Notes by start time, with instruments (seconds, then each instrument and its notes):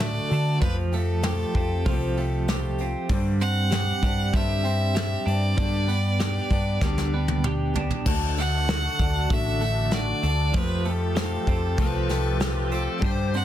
Already playing: picked electric bass A2, clean electric guitar D3 A3 D4
0.00 steel-string acoustic guitar A3 D4 F#4 A4, fiddle D5, snare, open hi-hat
0.29 picked electric bass D3, steel-string acoustic guitar D4 F#4 A4, open hi-hat
0.59 picked electric bass F2, steel-string acoustic guitar F3 A3 C4 F4 G4, fiddle B4, kick, open hi-hat
0.64 clean electric guitar F3
0.92 clean electric guitar A3, steel-string acoustic guitar C4 F4 G4, fiddle A4, open hi-hat
1.23 steel-string acoustic guitar A3 C4 F4 G4, snare, open hi-hat
1.55 picked electric bass F2, steel-string acoustic guitar C4 F4 G4, kick, open hi-hat
1.86 picked electric bass C2, steel-string acoustic guitar F3 A3 C4 F4 G4, kick, open hi-hat
2.17 clean electric guitar A3, steel-string acoustic guitar C4 F4 G4, open hi-hat
2.48 steel-string acoustic guitar A3 C4 F4, snare, open hi-hat
2.53 steel-string acoustic guitar G4
2.78 steel-string acoustic guitar F4 G4, open hi-hat
2.83 steel-string acoustic guitar C4
3.09 picked electric bass G2, steel-string acoustic guitar G2 D3 G3 C4 D4 G4, kick, open hi-hat
3.40 steel-string acoustic guitar C4 D4 G4, fiddle F#5, open hi-hat
3.44 steel-string acoustic guitar G3
3.71 steel-string acoustic guitar G3 C4 D4 G4, snare, open hi-hat
4.03 picked electric bass G2, steel-string acoustic guitar C4 D4 G4, kick, open hi-hat
4.07 steel-string acoustic guitar G3
4.33 picked electric bass G2, steel-string acoustic guitar G2 D3 G3 C4 D4 G4, fiddle E5, kick, open hi-hat
4.63 steel-string acoustic guitar G3 C4 D4 G4, open hi-hat
4.94 steel-string acoustic guitar G3 C4 D4 G4, snare, open hi-hat
5.26 picked electric bass G2, steel-string acoustic guitar C4 D4 G4, fiddle D5, open hi-hat
5.31 steel-string acoustic guitar G3
5.54 steel-string acoustic guitar G2 D3 G3 B3 D4 G4, picked electric bass G2, kick, open hi-hat
5.87 steel-string acoustic guitar G3 B3 D4 G4, open hi-hat
6.18 steel-string acoustic guitar G3 B3 D4 G4, snare, open hi-hat
6.50 picked electric bass G2, steel-string acoustic guitar B3 D4 G4, kick, open hi-hat
6.55 steel-string acoustic guitar G3
6.81 picked electric bass D2, steel-string acoustic guitar G2 D3 G3 B3 D4 G4, kick, snare
6.98 snare
7.13 steel-string acoustic guitar G3 B3 D4 G4
7.28 high tom
7.44 steel-string acoustic guitar G3 B3 D4 G4, mid tom
7.74 steel-string acoustic guitar G3 B3 D4 G4, floor tom
7.91 floor tom
8.06 picked electric bass D2, steel-string acoustic guitar D3 A3 D4 F#4 A4, tonewheel organ D4 F#4 A4, kick, crash
8.37 clean electric guitar A3, steel-string acoustic guitar F#4 A4, fiddle F#5, open hi-hat
8.41 steel-string acoustic guitar D4
8.68 steel-string acoustic guitar A3 D4 F#4, snare, open hi-hat
8.72 steel-string acoustic guitar A4
8.99 picked electric bass D2, steel-string acoustic guitar F#4 A4, kick, open hi-hat
9.03 steel-string acoustic guitar D4
9.30 picked electric bass A1, steel-string acoustic guitar D3 A3 D4 F#4 A4, fiddle E5, kick, open hi-hat
9.61 clean electric guitar A3, steel-string acoustic guitar D4 F#4 A4, open hi-hat
9.91 steel-string acoustic guitar A3 D4 F#4 A4, fiddle D5, snare, open hi-hat
10.23 picked electric bass D2, steel-string acoustic guitar F#4 A4, open hi-hat
10.27 steel-string acoustic guitar D4
10.54 picked electric bass F2, steel-string acoustic guitar F3 A3 C4 F4 G4, tonewheel organ F4 G4 A4, kick, open hi-hat
10.58 fiddle B4
10.85 clean electric guitar A3, steel-string acoustic guitar F4 G4, open hi-hat
10.90 steel-string acoustic guitar C4, fiddle A4
11.15 steel-string acoustic guitar A3 C4 F4 G4, snare, open hi-hat
11.47 picked electric bass F2, steel-string acoustic guitar C4 F4 G4, kick, open hi-hat
11.77 picked electric bass C2, steel-string acoustic guitar F3 A3 C4 F4 G4, kick, open hi-hat
11.82 electric slide guitar B4
12.09 clean electric guitar A3, steel-string acoustic guitar C4 F4 G4, snare, open hi-hat
12.40 steel-string acoustic guitar A3 C4 F4 G4, snare, open hi-hat
12.70 steel-string acoustic guitar C4 F4 G4, open hi-hat
12.74 electric slide guitar A4
12.98 steel-string acoustic guitar G2 D3 G3 C4 D4 G4, tonewheel organ G4, open hi-hat
13.02 picked electric bass G2, clean electric guitar G2, tonewheel organ D4 C5, electric slide guitar C5, kick
13.31 steel-string acoustic guitar G3 C4 D4 G4, open hi-hat
13.36 fiddle F#5